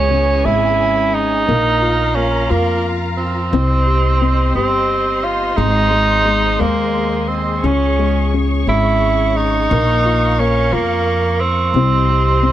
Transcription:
0.00 0.42 C#2 medium
0.00 0.11 C#3 medium
0.00 1.46 E3 medium
0.00 0.43 G#3 soft
0.00 0.47 C#4 medium
0.00 1.46 G#4 medium
0.00 1.46 C#5 medium
0.00 1.46 G#5 medium
0.11 1.44 C#3 soft
0.45 1.44 G#1 medium
0.45 1.45 G#3 medium
0.45 1.15 E4 medium
1.14 2.17 D#4 medium
1.48 2.47 A#1 medium
1.48 2.15 A#3 medium
1.48 3.51 F4 medium
1.48 3.51 A#4 medium
1.48 3.51 F5 medium
1.48 3.51 A#5 medium
1.82 2.48 F4 soft
2.15 3.49 A#3 soft
2.15 2.52 C#4 medium
2.49 3.49 F2 medium
2.49 2.92 A#3 medium
2.49 3.49 F4 medium
3.17 4.50 C4 medium
3.52 4.51 C2 loud
3.52 4.20 C4 medium
3.52 5.55 G4 medium
3.52 7.60 C5 medium
3.52 7.60 D#5 medium
3.52 7.60 C6 medium
3.87 4.55 G4 soft
4.22 5.54 C4 medium
4.55 5.53 G1 medium
4.55 5.26 C4 loud
4.55 5.55 G4 medium
5.24 5.58 F4 medium
5.57 6.56 G#1 loud
5.57 5.89 G#3 medium
5.57 6.62 D#4 loud
5.57 9.67 G#4 medium
5.91 6.24 G#3 medium
6.25 6.58 G#3 medium
6.59 7.60 D#2 medium
6.59 7.60 G#3 medium
6.59 7.29 A#3 medium
7.28 7.67 C4 medium
7.64 8.64 C#2 loud
7.64 8.32 C#3 medium
7.64 8.41 C#4 medium
7.64 9.69 C#5 medium
7.64 11.72 C#6 medium
7.99 8.66 G#3 soft
8.34 9.67 C#3 soft
8.67 9.66 G#1 medium
8.67 9.68 G#3 medium
8.67 9.38 E4 medium
9.36 10.41 D#4 medium
9.70 10.69 A#1 loud
9.70 10.38 A#3 medium
9.70 11.73 A#4 medium
9.70 11.73 F5 medium
10.05 10.71 F4 medium
10.39 11.72 A#3 medium
10.39 10.75 C#4 medium
10.73 11.71 F2 medium
10.73 11.42 A#3 loud
10.73 11.72 F4 medium
11.40 12.52 C4 loud
11.74 12.52 C2 medium
11.74 12.41 C4 medium
11.74 12.52 G4 medium
11.74 12.52 C5 medium
11.74 12.52 D#5 medium
11.74 12.52 C6 medium
12.09 12.52 G4 medium
12.43 12.52 C4 medium

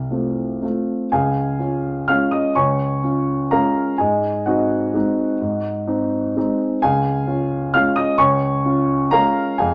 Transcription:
0.00 0.65 C2 soft
0.00 0.89 F5 soft
0.11 0.59 A3 soft
0.11 0.59 C4 soft
0.11 0.59 F4 soft
0.62 1.09 A3 soft
0.62 1.09 C4 soft
0.62 1.09 F4 soft
1.12 1.59 C#2 soft
1.12 2.05 G#4 soft
1.12 2.05 F5 soft
1.12 2.08 G#5 medium
1.59 2.04 C#4 soft
1.59 2.04 F4 soft
2.08 2.52 G#3 soft
2.08 2.53 C#4 soft
2.08 2.53 F4 soft
2.08 2.31 F5 soft
2.08 2.33 F6 medium
2.31 2.55 D#5 soft
2.31 2.56 D#6 medium
2.55 3.02 C#2 soft
2.55 3.47 C#5 soft
2.55 3.47 G#5 soft
2.55 3.51 C#6 medium
3.03 3.47 C#4 soft
3.03 3.48 F4 soft
3.51 3.95 G#3 soft
3.51 3.95 C#4 soft
3.51 3.96 F4 soft
3.51 3.96 A#4 soft
3.51 3.96 F5 soft
3.51 3.99 A#5 medium
3.98 4.46 G#2 soft
3.98 4.44 G#4 soft
3.98 4.44 D#5 soft
3.98 4.47 G#5 soft
4.46 4.91 C4 soft
4.46 4.91 D#4 soft
4.46 6.56 F#4 soft
4.46 6.56 D#5 soft
4.46 6.59 F#5 soft
4.94 5.37 G#3 soft
4.94 5.37 C4 soft
4.94 5.37 D#4 soft
5.41 5.86 G#2 soft
5.87 6.32 C4 soft
5.87 6.32 D#4 soft
6.36 6.79 G#3 soft
6.36 6.79 C4 soft
6.36 6.79 D#4 soft
6.82 7.27 C#2 soft
6.82 7.70 G#4 soft
6.82 7.71 F5 soft
6.82 7.74 G#5 medium
7.27 7.70 C#4 soft
7.27 7.70 F4 soft
7.74 8.15 G#3 soft
7.74 8.15 C#4 soft
7.74 8.16 F4 soft
7.74 7.96 F5 soft
7.74 7.97 F6 medium
7.96 8.18 D#5 medium
7.96 8.18 D#6 medium
8.18 8.63 C#2 soft
8.18 9.08 C#5 medium
8.18 9.08 G#5 medium
8.18 9.12 C#6 medium
8.65 9.08 C#4 soft
8.65 9.08 F4 soft
9.11 9.54 G#3 soft
9.11 9.54 C#4 soft
9.11 9.55 F4 soft
9.11 9.55 A#4 medium
9.11 9.55 F5 medium
9.11 9.58 A#5 medium
9.58 9.74 F2 soft
9.58 9.74 G#4 soft
9.58 9.74 F5 soft
9.58 9.74 G#5 medium

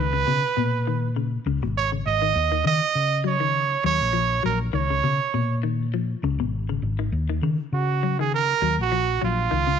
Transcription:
0.00 0.24 C#2 loud
0.00 1.13 B4 loud
0.13 0.23 C#3 medium
0.27 0.49 B2 medium
0.27 0.41 C#3 medium
0.57 1.37 A#2 medium
0.57 0.79 B2 medium
0.87 1.09 D#3 medium
1.16 1.38 C#3 medium
1.46 1.60 C#2 medium
1.46 1.58 C#3 medium
1.62 2.01 G#1 medium
1.62 1.85 B2 medium
1.77 1.90 C#5 medium
1.92 2.14 C#3 medium
2.06 2.33 G#1 medium
2.06 2.62 D#5 loud
2.22 2.32 D#3 medium
2.35 2.62 D#2 loud
2.52 2.62 D#3 medium
2.64 2.87 C#3 medium
2.64 2.80 D#3 medium
2.64 3.22 D#5 loud
2.95 3.75 C#3 medium
3.24 3.36 F#3 medium
3.24 3.82 C#5 loud
3.40 3.63 D#3 medium
3.84 3.99 D#2 medium
3.84 4.06 F#3 medium
3.84 4.41 C#5 loud
4.01 4.40 A#1 medium
4.13 4.36 F3 medium
4.43 4.71 A#1 medium
4.43 4.66 F#3 medium
4.43 4.58 A#4 medium
4.73 5.00 C#2 loud
4.73 4.85 D#3 medium
4.73 5.60 C#5 loud
4.90 5.00 C#3 medium
5.04 5.26 B2 medium
5.04 5.18 C#3 medium
5.34 6.14 A#2 medium
5.34 5.56 B2 medium
5.63 5.86 D#3 medium
5.94 6.16 F3 medium
6.23 6.38 C#2 medium
6.23 6.36 C#3 medium
6.38 6.78 G#1 medium
6.38 6.62 B2 medium
6.69 6.91 C#3 medium
6.82 7.09 G#1 medium
6.99 7.09 D#3 medium
7.12 7.39 D#2 loud
7.29 7.39 D#3 medium
7.42 7.65 C#3 medium
7.42 7.57 D#3 medium
7.72 8.53 C#3 medium
7.72 8.16 F#4 medium
8.03 8.15 F#3 medium
8.19 8.41 D#3 medium
8.19 8.32 G#4 medium
8.34 8.76 A#4 loud
8.62 8.76 D#2 medium
8.62 8.84 F#3 medium
8.78 9.18 A#1 medium
8.78 9.21 F#4 loud
8.92 9.14 F3 medium
9.22 9.49 A#1 medium
9.22 9.44 F#3 medium
9.22 9.79 F4 loud
9.51 9.79 C#2 loud
9.51 9.63 D#3 medium
9.67 9.78 C#3 medium

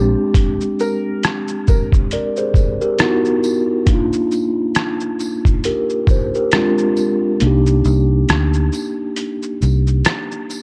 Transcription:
0.00 0.14 A#1 medium
0.00 2.95 G#3 medium
0.00 2.96 C4 medium
0.00 2.97 D4 medium
0.00 2.10 G4 medium
0.34 kick loud
0.34 closed hi-hat medium
0.34 shaker medium
0.61 shaker medium
0.79 1.20 A#4 medium
0.79 tambourine soft
0.79 shaker soft
1.23 cross-stick loud
1.23 closed hi-hat medium
1.23 shaker medium
1.48 shaker medium
1.67 1.91 A#4 medium
1.67 kick medium
1.67 tambourine medium
1.67 shaker soft
1.92 kick medium
1.92 shaker soft
2.11 2.36 A#4 medium
2.11 2.36 D5 medium
2.11 closed hi-hat medium
2.11 shaker medium
2.36 2.80 G#4 medium
2.36 2.79 C5 medium
2.36 shaker soft
2.54 kick loud
2.54 tambourine soft
2.54 shaker soft
2.81 3.23 G4 medium
2.81 3.23 A#4 medium
2.81 shaker soft
2.99 3.88 B3 medium
2.99 3.88 D#4 medium
2.99 3.89 E4 medium
2.99 3.89 F#4 loud
2.99 cross-stick loud
2.99 closed hi-hat medium
2.99 shaker medium
3.25 shaker soft
3.43 tambourine medium
3.43 shaker soft
3.86 6.48 A#3 medium
3.86 6.49 D4 medium
3.86 kick loud
3.86 closed hi-hat medium
3.86 shaker medium
3.90 6.50 D#4 medium
3.90 6.51 F4 medium
4.13 shaker medium
4.31 tambourine soft
4.31 shaker soft
4.75 cross-stick loud
4.75 closed hi-hat medium
4.75 shaker medium
5.00 shaker medium
5.19 tambourine medium
5.19 shaker soft
5.45 kick medium
5.45 shaker soft
5.64 6.07 G4 medium
5.64 6.07 A#4 medium
5.64 closed hi-hat medium
5.64 shaker medium
5.90 shaker soft
6.07 6.34 C5 medium
6.07 kick loud
6.07 tambourine soft
6.07 shaker soft
6.34 6.77 G4 medium
6.34 6.76 A#4 medium
6.34 shaker soft
6.52 7.41 G#3 medium
6.52 7.42 C4 medium
6.52 7.41 D4 medium
6.52 cross-stick loud
6.52 closed hi-hat medium
6.52 shaker medium
6.56 7.43 F4 medium
6.78 shaker soft
6.96 tambourine medium
6.96 shaker soft
7.40 7.80 C2 loud
7.40 10.62 A#3 medium
7.40 10.62 D4 medium
7.40 closed hi-hat medium
7.40 shaker medium
7.44 10.62 D#4 medium
7.44 10.62 G4 medium
7.66 shaker medium
7.84 8.24 C2 loud
7.84 tambourine soft
7.84 shaker soft
8.29 8.68 D2 medium
8.29 cross-stick loud
8.29 closed hi-hat medium
8.29 shaker medium
8.54 shaker soft
8.72 tambourine medium
8.72 shaker soft
9.16 closed hi-hat medium
9.16 shaker medium
9.43 shaker soft
9.62 10.01 C2 medium
9.62 tambourine soft
9.62 shaker soft
9.87 shaker soft
10.05 cross-stick loud
10.05 closed hi-hat medium
10.05 shaker medium
10.32 shaker soft
10.50 tambourine medium
10.50 shaker soft

